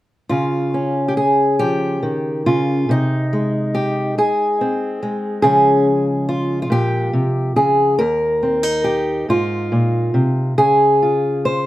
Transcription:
0.29 C#3 F4
0.74 C#4
1.08 G4
1.17 G#4
1.59 F3 G4
2.03 D#3
2.46 C#3 F4
2.89 C3 D#4
3.33 G#3
3.75 G4
4.18 G#4, muted steel-string acoustic guitar stroke
4.61 C4
5.03 G#3
5.42 C#3 F3 G#3 C#4 G#4
6.29 F4
6.62 F4
6.70 A#2 G4
7.13 C3
7.56 C#3 G#4
7.99 D#2 A#4
8.43 C4
8.63 D#4
8.84 G4
9.29 G#2 F4
9.72 A#2
10.14 C3
10.58 C#3 G#4
11.02 F4
11.45 C5

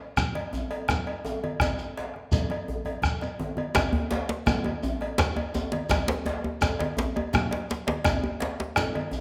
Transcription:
0.17 bombo rim, bombo low, low conga, shekere
0.35 cowbell, high conga
0.53 djembe bass, shekere
0.71 bombo rim, cowbell, djembe tone
0.88 bombo rim, bombo low, djembe slap, low conga, shekere
1.07 cowbell
1.25 djembe tone, high conga, shekere
1.44 cowbell, high conga
1.60 bombo rim, bombo low, cowbell, high conga, djembe bass, low conga, shekere
1.79 djembe tone, high conga, shekere
1.97 cowbell, djembe slap
2.14 bombo rim, high conga
2.32 bombo low, cowbell, djembe tone, high conga, low conga, shekere
2.50 bombo rim, cowbell, high conga
2.68 djembe slap, high conga, djembe bass
2.85 cowbell, djembe tone, low conga
3.02 bombo rim, bombo low, djembe slap, low conga, shekere
3.21 bombo rim, cowbell, low conga, shekere
3.39 djembe tone, high conga
3.57 cowbell, high conga
3.75 bombo rim, bombo low, cowbell, djembe slap, djembe bass, low conga, shekere
3.93 djembe tone, djembe bass
4.11 cowbell, djembe slap, djembe tone
4.29 djembe slap
4.46 bombo rim, bombo low, cowbell, djembe tone, low conga, djembe bass, shekere
4.64 cowbell, djembe tone, high conga
4.83 djembe bass, shekere
5.01 bombo rim, cowbell, djembe tone
5.18 bombo rim, bombo low, djembe slap, low conga, shekere
5.36 cowbell, djembe tone
5.54 djembe tone, high conga, shekere
5.72 cowbell, djembe slap, high conga
5.89 bombo rim, bombo low, cowbell, djembe slap, low conga, djembe bass, shekere
6.08 djembe slap, djembe tone
6.26 cowbell, djembe slap, djembe tone
6.44 djembe tone
6.61 bombo rim, bombo low, cowbell, djembe slap, djembe tone, shekere
6.79 cowbell, djembe slap, high conga
6.97 djembe slap, djembe bass, shekere
7.16 bombo rim, cowbell, djembe tone
7.33 bombo rim, bombo low, djembe slap, djembe tone, low conga, shekere
7.51 cowbell, djembe slap
7.70 djembe slap, high conga, shekere
7.87 cowbell, djembe slap, high conga
8.04 bombo rim, bombo low, cowbell, djembe tone, low conga, djembe bass, shekere
8.24 djembe tone
8.40 cowbell, djembe slap
8.42 djembe slap
8.60 djembe slap
8.76 bombo rim, cowbell, djembe tone, low conga, shekere
8.95 cowbell, high conga
9.11 djembe bass, shekere

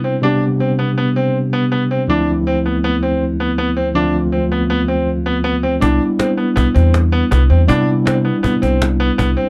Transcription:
Already playing: C3 G3 B3 D4 E4
0.04 C4
0.22 C3 G3 B3 D4 G4
0.60 C4
0.79 B3
0.98 B3
1.16 C4
1.53 B3
1.72 B3
1.91 C4
2.08 D2 F3 A3 C4 D4 E4
2.47 C4
2.66 B3
2.84 B3
3.03 C4
3.40 B3
3.58 B3
3.77 C4
3.94 D2 F3 A3 C4 D4 F4
4.32 C4
4.52 B3
4.70 B3
4.88 C4
5.26 B3
5.44 B3
5.63 C4
5.80 C2 G3 B3 D4 E4, cajon bass
6.01 cajon slap
6.19 C4, cajon slap
6.37 B3, cajon slap
6.56 C2 B3, cajon bass
6.74 E2 C4, cajon bass, cajon slap
6.94 cajon slap
7.12 B3, cajon slap
7.31 C2 B3, cajon bass
7.50 E2 C4, cajon slap
7.68 C3 G3 B3 D4 E4, cajon bass
7.88 cajon slap
8.05 C4, cajon slap
8.25 B3, cajon slap
8.43 C3 B3, cajon bass
8.62 C2 C4, cajon bass
8.82 cajon slap
9.00 B3, cajon slap
9.18 C2 B3, cajon bass
9.37 C4, cajon slap

